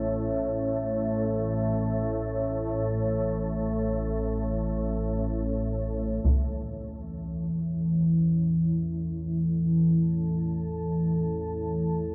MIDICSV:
0, 0, Header, 1, 4, 480
1, 0, Start_track
1, 0, Tempo, 500000
1, 11662, End_track
2, 0, Start_track
2, 0, Title_t, "Ambient pad"
2, 0, Program_c, 0, 92
2, 5979, Note_on_c, 0, 52, 79
2, 6612, Note_on_c, 0, 64, 88
2, 8204, Note_on_c, 0, 69, 76
2, 8940, Note_on_c, 0, 81, 81
2, 11662, Note_off_c, 0, 52, 0
2, 11662, Note_off_c, 0, 64, 0
2, 11662, Note_off_c, 0, 69, 0
2, 11662, Note_off_c, 0, 81, 0
2, 11662, End_track
3, 0, Start_track
3, 0, Title_t, "Synth drone"
3, 0, Program_c, 1, 95
3, 0, Note_on_c, 1, 33, 62
3, 0, Note_on_c, 1, 45, 66
3, 5988, Note_off_c, 1, 45, 0
3, 5994, Note_off_c, 1, 33, 0
3, 5999, Note_on_c, 1, 45, 66
3, 6006, Note_on_c, 1, 33, 71
3, 11662, Note_off_c, 1, 33, 0
3, 11662, Note_off_c, 1, 45, 0
3, 11662, End_track
4, 0, Start_track
4, 0, Title_t, "Taiko and cinematic ensemble drums"
4, 6000, Note_on_c, 9, 41, 76
4, 6096, Note_off_c, 9, 41, 0
4, 11662, End_track
0, 0, End_of_file